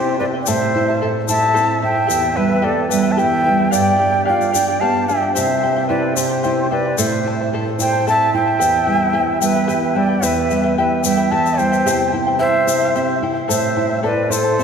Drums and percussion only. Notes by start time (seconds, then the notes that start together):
0.46 shaker
1.28 shaker
1.56 shaker
2.10 shaker
2.91 shaker
3.19 shaker
3.73 shaker
4.41 shaker
4.55 shaker
5.09 shaker
5.36 shaker
6.17 shaker
6.44 shaker
6.98 shaker
7.80 shaker
8.08 shaker
8.61 shaker
9.42 shaker
9.69 shaker
10.23 shaker
10.50 shaker
11.04 shaker
11.46 shaker
11.59 shaker
11.73 shaker
11.87 shaker
12.68 shaker
12.95 shaker
13.50 shaker
14.32 shaker
14.60 shaker